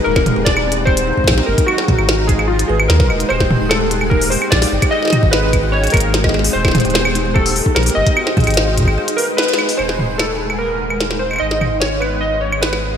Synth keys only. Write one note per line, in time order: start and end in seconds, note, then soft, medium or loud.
0.04 0.43 A#4 loud
0.45 0.83 D5 loud
0.85 1.49 C5 loud
1.46 1.68 A#4 medium
1.66 2.30 F#4 loud
2.27 2.49 G#4 medium
2.48 2.69 F4 loud
2.68 2.90 G#4 medium
2.88 3.31 A#4 medium
3.29 3.71 C5 loud
3.69 4.08 A4 loud
4.10 4.32 A#4 loud
4.30 4.50 C5 medium
4.50 4.93 D5 loud
4.91 5.33 D#5 loud
5.31 5.74 B4 loud
5.72 5.94 C#5 loud
5.92 6.31 A#4 medium
6.53 6.92 C5 loud
6.94 7.36 C5 loud
7.34 7.73 A4 loud
7.75 7.96 A#4 medium
7.95 9.34 D#5 medium
9.17 9.26 A#4 medium
9.37 9.75 B4 loud
9.77 10.20 C5 loud
10.18 10.61 A4 medium
10.58 11.22 A#4 loud
11.19 11.41 C5 medium
11.40 11.82 D#5 loud
11.80 12.02 C#5 loud
12.00 12.22 B4 medium
12.21 12.42 D#5 loud
12.41 12.63 C#5 medium
12.61 12.97 B4 medium